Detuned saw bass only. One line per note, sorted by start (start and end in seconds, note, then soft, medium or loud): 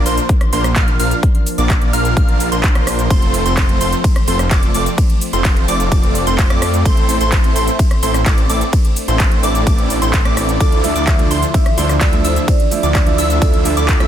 0.06 0.19 A#1 loud
0.53 0.74 A#1 medium
0.76 0.97 A#1 loud
1.00 1.12 A#1 loud
1.58 1.91 A#1 loud
1.93 2.14 A#1 medium
2.17 2.50 A#1 medium
2.52 3.08 A#1 loud
3.10 3.43 F1 loud
3.46 3.78 F1 loud
3.81 3.94 F1 medium
4.28 4.49 F1 loud
4.51 4.72 F1 loud
4.75 4.87 F1 loud
5.33 5.66 F1 loud
5.68 5.89 F1 medium
5.92 6.25 F1 medium
6.27 6.48 F1 medium
6.50 6.83 F2 loud
6.85 7.18 A1 loud
7.21 7.53 A1 loud
7.56 7.69 A1 loud
8.03 8.24 A1 loud
8.26 8.47 A1 loud
8.49 8.62 A1 loud
9.08 9.41 A1 loud
9.43 9.64 A1 loud
9.67 10.00 A1 loud
10.02 10.23 A1 loud
10.25 10.58 A1 loud
10.60 10.93 D2 loud
10.96 11.28 D2 loud
11.31 11.44 D2 loud
11.78 11.99 D2 loud
12.01 12.22 D2 loud
12.24 12.37 D2 loud
12.83 13.16 D2 loud
13.18 13.39 D2 loud
13.42 13.75 D2 loud
13.77 13.98 D2 loud
14.00 14.07 D2 loud